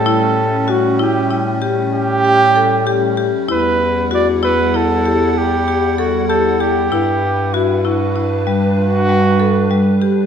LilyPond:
<<
  \new Staff \with { instrumentName = "Flugelhorn" } { \time 11/8 \key a \mixolydian \tempo 4 = 96 a'4 fis'8 g'4 r8 g'2 r8 | b'4 d''8 b'8 a'4 g'4 fis'8 a'8 g'8~ | g'4 e'8 fis'4 r8 fis'2 r8 | }
  \new Staff \with { instrumentName = "Marimba" } { \time 11/8 \key a \mixolydian e'4 fis'8 e'8 e'8 g'4 g'8 a'8 g'8 g'8 | e'4 fis'8 e'8 e'8 g'4 g'8 a'8 g'8 g'8 | e'4 fis'8 e'8 e'8 g4 g8 a'8 g8 g'8 | }
  \new Staff \with { instrumentName = "Ambient pad" } { \time 11/8 \key a \mixolydian << { <a cis'>1~ <a cis'>4. | <e' fis''>1~ <e' fis''>4. | <d' b'>1~ <d' b'>4. | } \\ { g1~ g4.~ | g1~ g4.~ | g1~ g4. | } >> }
  \new Staff \with { instrumentName = "Bass clarinet" } { \clef bass \time 11/8 \key a \mixolydian a,1~ a,4. | e,1~ e,4. | g,1~ g,4. | }
>>